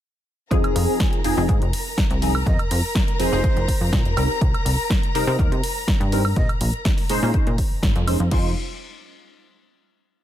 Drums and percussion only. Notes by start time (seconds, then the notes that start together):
0.51 kick, closed hi-hat
0.64 closed hi-hat, high woodblock
0.76 open hi-hat
1.00 kick, snare, closed hi-hat
1.13 closed hi-hat
1.24 open hi-hat
1.49 kick, closed hi-hat
1.62 closed hi-hat
1.73 open hi-hat
1.98 kick, snare, closed hi-hat
2.11 closed hi-hat
2.22 open hi-hat
2.35 high woodblock
2.46 kick, closed hi-hat
2.59 closed hi-hat, high woodblock
2.71 open hi-hat
2.95 kick, snare, closed hi-hat
3.08 closed hi-hat
3.20 open hi-hat
3.44 kick, closed hi-hat
3.57 closed hi-hat
3.68 kick, open hi-hat
3.93 kick, snare, closed hi-hat
4.05 closed hi-hat
4.17 open hi-hat, high woodblock
4.41 kick, closed hi-hat
4.54 closed hi-hat, high woodblock
4.66 open hi-hat
4.90 kick, snare, closed hi-hat
5.03 closed hi-hat
5.15 open hi-hat
5.39 kick, closed hi-hat
5.52 closed hi-hat
5.64 open hi-hat
5.88 kick, snare, closed hi-hat
6.01 closed hi-hat
6.12 open hi-hat
6.25 high woodblock
6.36 kick, closed hi-hat
6.49 closed hi-hat, high woodblock
6.61 open hi-hat
6.74 closed hi-hat
6.85 kick, snare, closed hi-hat
6.98 open hi-hat
7.10 open hi-hat
7.34 kick, closed hi-hat
7.47 closed hi-hat
7.58 kick, open hi-hat
7.83 kick, snare, closed hi-hat
7.96 closed hi-hat
8.08 open hi-hat, high woodblock
8.20 closed hi-hat
8.31 kick, crash